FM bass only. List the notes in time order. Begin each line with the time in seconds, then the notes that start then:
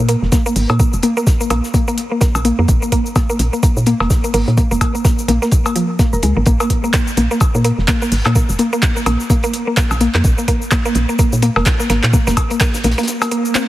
0.00 A#2
0.22 F1
0.56 G#1
0.70 A#2
0.93 F1
1.50 A#1
2.35 A#1
2.59 F2
2.68 A#1
3.39 A#1
3.77 A#2
4.00 F1
4.34 G#1
4.48 A#2
4.71 F1
5.28 A#1
6.13 F1
6.23 C#2
6.37 G#1
6.46 A#1
7.17 A#1
7.55 A#2
7.78 F1
8.12 G#1
8.26 A#2
8.49 F1
9.06 A#1
9.91 A#1
10.15 F2
10.24 A#1
10.95 A#1
11.33 A#2
11.56 F1
11.90 G#1
12.04 A#2
12.27 F1
12.84 A#1